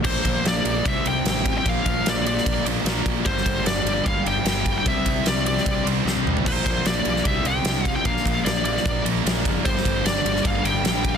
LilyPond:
<<
  \new Staff \with { instrumentName = "Lead electric guitar" } { \time 4/4 \key bes \lydian \tempo 4 = 150 c''4 d''4 e''8 g''4~ g''16 g''16 | f''4 d''8 d''4 r4. | c''4 d''4 f''8 g''4~ g''16 g''16 | e''4 d''8 d''4 r4. |
c''4 d''4 e''8 g''4~ g''16 g''16 | f''4 d''8 d''4 r4. | c''4 d''4 f''8 g''4~ g''16 r16 | }
  \new Staff \with { instrumentName = "Overdriven electric guitar" } { \time 4/4 \key bes \lydian <bes, f bes d' f' bes'>2 <c g c' e' g' c''>2 | <bes, f bes d' f' bes'>2~ <bes, f bes d' f' bes'>8 <bes, f bes d' f' bes'>8 <bes, f bes d' f' bes'>4 | <g, d g bes d' g'>2~ <g, d g bes d' g'>8 <g, d g bes d' g'>8 <g, d g bes d' g'>4 | <c g c' e' g' c''>2~ <c g c' e' g' c''>8 <c g c' e' g' c''>8 <c g c' e' g' c''>4 |
<bes, f bes d' f' bes'>2 <c g c' e' g' c''>2 | <bes, f bes d' f' bes'>2~ <bes, f bes d' f' bes'>8 <bes, f bes d' f' bes'>8 <bes, f bes d' f' bes'>4 | <g, d g bes d' g'>2~ <g, d g bes d' g'>8 <g, d g bes d' g'>8 <g, d g bes d' g'>4 | }
  \new Staff \with { instrumentName = "Distorted electric guitar" } { \clef bass \time 4/4 \key bes \lydian <bes, f bes>2 <c g c'>2 | <bes, f bes>2~ <bes, f bes>8 <bes, f bes>8 <bes, f bes>4 | <g, d g>2~ <g, d g>8 <g, d g>8 <g, d g>4 | <c g c'>2~ <c g c'>8 <c g c'>8 <c g c'>4 |
<bes, f bes>2 <c g c'>2 | <bes, f bes>2~ <bes, f bes>8 <bes, f bes>8 <bes, f bes>4 | <g, d g>2~ <g, d g>8 <g, d g>8 <g, d g>4 | }
  \new Staff \with { instrumentName = "Overdriven electric guitar" } { \clef bass \time 4/4 \key bes \lydian <bes, f bes>4. <bes, f bes>8 <c g c'>4. <c g c'>8 | <bes, f bes>4. <bes, f bes>4. <bes, f bes>4 | <g, d g>4. <g, d g>4. <g, d g>4 | <c g c'>4. <c g c'>4. <c g c'>4 |
<bes, f bes>4. <bes, f bes>8 <c g c'>4. <c g c'>8 | <bes, f bes>4. <bes, f bes>4. <bes, f bes>4 | <g, d g>4. <g, d g>4. <g, d g>4 | }
  \new Staff \with { instrumentName = "Fingered electric bass" } { \clef bass \time 4/4 \key bes \lydian r8 bes,,8 bes,,8 bes,,8 c,8 c,8 a,,4 | bes,,8 bes,,8 bes,,4 bes,,8 bes,,8 bes,,8 bes,,8 | g,,8 g,,8 g,,8 g,,8 g,,8 g,,8 g,,4 | c,8 c,8 c,4 c,8 c,8 c,8 c,8 |
bes,,8 bes,,8 bes,,8 b,,8 c,8 c,8 c,4 | bes,,8 bes,,8 bes,,4 bes,,8 bes,,8 bes,,8 fis,,8 | g,,8 g,,8 g,,8 g,,8 g,,8 g,,8 bes,,4 | }
  \new DrumStaff \with { instrumentName = "Drums" } \drummode { \time 4/4 <cymc bd>8 <bd cymr>8 <cymr sn>8 cymr8 <bd cymr>8 cymr8 <cymr sn>8 <bd cymr>8 | <bd cymr>8 <bd cymr>8 <cymr sn>8 cymr16 sn16 <bd cymr>8 cymr8 <cymr sn>8 <bd cymr>8 | <bd cymr>16 sn16 <bd cymr>8 <cymr sn>8 cymr8 <bd cymr>8 cymr8 <cymr sn>8 <bd cymr>8 | <bd cymr>8 <bd cymr>8 <cymr sn>8 cymr16 sn16 <bd cymr>8 cymr8 sn16 tommh16 toml16 tomfh16 |
<cymc bd cymr>8 <bd cymr>8 <cymr sn>8 cymr16 sn16 <bd cymr>8 cymr8 <cymr sn>8 <bd cymr>8 | <bd cymr>16 sn16 <bd cymr>8 <cymr sn>8 cymr16 sn16 <bd cymr>8 cymr8 <cymr sn>8 <bd cymr>8 | <bd cymr>16 sn16 <bd cymr>8 <cymr sn>8 cymr16 sn16 <bd cymr>8 cymr8 <cymr sn>8 <bd cymr>8 | }
>>